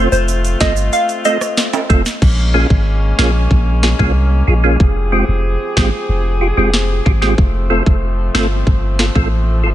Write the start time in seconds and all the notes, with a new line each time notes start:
Already playing: A3 C4 F4
0.12 F1 C5, shaker
0.28 closed hi-hat, shaker
0.45 closed hi-hat, shaker
0.60 G1 A3 C4 F4 A4 D#5, kick, snare, closed hi-hat, shaker
0.76 shaker
0.93 F5, closed hi-hat, shaker
1.09 closed hi-hat, shaker
1.25 A3 C4 F4 A4 D#5, closed hi-hat, shaker
1.41 cross-stick, shaker
1.57 snare, closed hi-hat, shaker
1.73 closed hi-hat, high timbale, shaker
1.89 F1 A3 C4 F4 A4, kick, closed hi-hat
2.06 snare, shaker
2.22 A#1 G#3 A#3 C#4, kick, crash
2.54 A#3 C#4 F4 G#4
2.70 G#1, kick
3.19 A#1 A#3 C#4 F4 G#4, snare
3.51 A#1, kick
3.83 F4 G#4, snare
3.99 C2 A#3 C#4 F4 G#4, kick
4.48 A#1 F4 G#4
4.64 A#3 C#4 F4 G#4
4.80 F1 F3 C4 G4 G#4, kick
5.12 G#3 C4 F4 G4
5.29 F1
5.77 G#1 G#3 C4 F4 G4, kick, snare
6.09 F1
6.41 F4 G4
6.57 F1 G#3 C4 F4 G4
6.74 snare
7.06 G#1 F4 G4, kick
7.22 G#3 C4 F4 G4, snare
7.38 F1 F3 A3, kick
7.70 A3 C4 F4 A4
7.86 F1, kick
8.35 G1 A3 C4 F4 A4, snare
8.67 G1, kick
8.99 F4 A4, snare
9.15 A1 A3 C4 F4 A4, kick
9.64 G1 F4 A4